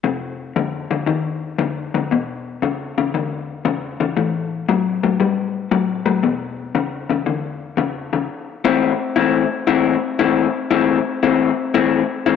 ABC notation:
X:1
M:4/4
L:1/8
Q:"Swing" 1/4=116
K:Ephr
V:1 name="Clean electric guitar" clef=bass
[F,,C,]2 [F,,D,] [F,,D,] [F,,^D,]2 [F,,=D,] [F,,D,] | [E,,B,,]2 [E,,^C,] [E,,C,] [E,,D,]2 [E,,C,] [E,,C,] | [A,,E,]2 [A,,^F,] [A,,F,] [A,,G,]2 [A,,F,] [A,,F,] | [E,,B,,]2 [E,,^C,] [E,,C,] [E,,D,]2 [E,,C,] [E,,C,] |
[K:Am] z [A,,E,CE] z [A,,E,CE] z [A,,E,CE] z [A,,E,CE] | z [A,,E,CE] z [A,,E,CE] z [A,,E,CE] z [A,,E,CE] |]